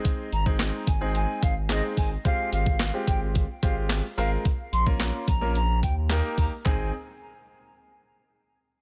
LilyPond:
<<
  \new Staff \with { instrumentName = "Flute" } { \time 4/4 \key aes \major \tempo 4 = 109 r8 bes''16 r8. aes''8 aes''8 f''16 r16 ees''16 r16 aes''16 r16 | f''8 f''8. r16 g''16 r8. f''16 r8. f''16 r16 | r8 c'''16 r8. bes''8 bes''8 g''16 r8. bes''16 r16 | aes''8 r2. r8 | }
  \new Staff \with { instrumentName = "Grand piano" } { \time 4/4 \key aes \major <aes c' ees' aes'>8 r16 <aes c' ees' aes'>8. r16 <aes c' ees' aes'>4 r16 <aes c' ees' aes'>8. r16 | <aes c' f' g'>4 r16 <aes c' f' g'>4 r16 <aes c' f' g'>8. r16 <aes c' f' bes'>8 | r8. <bes des' f' bes'>8. r16 <bes des' f' bes'>16 r4 <bes ees' g' bes'>8. r16 | <c' ees' aes'>8 r2. r8 | }
  \new Staff \with { instrumentName = "Analog synth bass" } { \clef bass \time 4/4 \key aes \major r8 aes,,4 aes,,4 aes,,4 aes,,8 | r8 aes,,4 aes,,4 aes,,4 aes,,8 | r8 bes,,4 bes,,4 ees,4 ees,16 r16 | aes,,8 r2. r8 | }
  \new DrumStaff \with { instrumentName = "Drums" } \drummode { \time 4/4 <hh bd>8 hh16 bd16 <hc hh sn>8 <hh bd>8 hh8 <hh bd>8 <hc hh sn>8 <hho bd>8 | <hh bd>8 hh16 bd16 <hc hh sn>8 <hh bd>8 <hh bd>8 <hh bd>8 <hc hh sn>8 hho8 | <hh bd>8 hh16 bd16 <hc hh sn>8 <hh bd>8 hh8 <hh bd>8 <hc hh sn>8 <hho bd>8 | <hc bd tomfh>4 r4 r4 r4 | }
>>